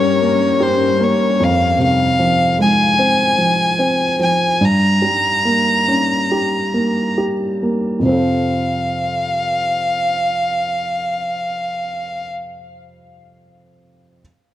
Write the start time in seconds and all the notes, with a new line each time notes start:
Already playing: G2 G3 A#3 C#4 G4 A#4 C#5
0.21 A#3
0.60 G4 C5
1.00 A#3 C#5
1.40 F2 F5
1.79 C3
1.83 F5
2.19 F3
2.59 G#3 G#5
2.99 C4
3.37 F3
3.79 C4
4.19 F3 G#5
4.61 G2 A#5
5.02 G3
5.45 A#3
5.88 C#4
6.32 G4
6.74 A#3
7.18 G4
7.63 A#3
7.99 F2 C3
8.05 F3 C4 F5
8.12 A4 C5